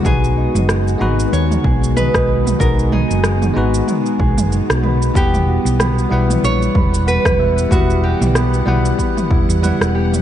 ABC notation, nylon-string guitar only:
X:1
M:4/4
L:1/8
Q:"Swing 16ths" 1/4=94
K:B
V:1 name="Nylon-string guitar"
G4 c2 B2 | A G6 z | =G4 c2 B2 | F =G6 z |]